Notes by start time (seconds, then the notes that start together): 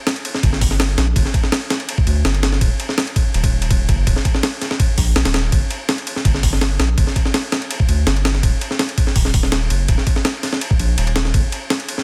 0.07 snare, ride
0.16 ride
0.25 ride
0.34 snare
0.43 G1, kick, ride
0.53 snare
0.61 kick, open hi-hat
0.71 snare
0.80 snare, ride
0.98 A#1, snare, ride
1.16 G1, kick, ride
1.25 snare
1.34 kick, ride
1.43 snare
1.52 snare, ride
1.70 snare, ride
1.80 ride
1.89 ride
1.98 kick
2.07 D2, ride
2.25 G1, snare, ride
2.34 ride
2.43 snare, ride
2.53 snare
2.61 D#1, kick, ride
2.80 ride
2.89 snare
2.98 snare, ride
3.07 ride
3.16 kick, ride
3.34 D#1, ride
3.44 kick, ride
3.62 ride
3.71 kick, ride
3.89 F#1, kick, ride
4.07 D#1, kick, ride
4.16 snare
4.25 kick, ride
4.35 snare
4.43 snare, ride
4.61 snare, ride
4.71 snare
4.80 kick, ride
4.98 A#1, kick, open hi-hat
5.16 A#1, snare, ride
5.25 D#1, snare, ride
5.34 snare, ride
5.52 G1, kick, ride
5.71 ride
5.89 snare, ride
5.98 ride
6.07 ride
6.16 snare
6.25 G1, kick, ride
6.35 snare
6.43 kick, open hi-hat
6.53 snare
6.61 snare, ride
6.79 A#1, snare, ride
6.98 G1, kick, ride
7.07 snare
7.16 kick, ride
7.25 snare
7.34 snare, ride
7.52 snare, ride
7.62 ride
7.71 ride
7.80 kick
7.88 D2, ride
8.07 G1, snare, ride
8.16 ride
8.25 snare, ride
8.35 snare
8.43 D#1, kick, ride
8.61 ride
8.71 snare
8.79 snare, ride
8.89 ride
8.98 kick, ride
9.07 snare
9.16 D#1, kick, open hi-hat
9.25 snare
9.34 kick, open hi-hat
9.43 snare
9.52 snare, ride
9.70 F#1, ride
9.88 D#1, kick, ride
9.98 snare
10.07 kick, ride
10.16 snare
10.25 snare, ride
10.43 snare, ride
10.53 snare
10.61 ride
10.71 kick
10.79 A#1, ride
10.98 D#1, ride
11.07 ride
11.16 snare, ride
11.25 snare
11.34 G1, kick, ride
11.52 ride
11.70 snare, ride
11.80 ride
11.88 ride
11.98 snare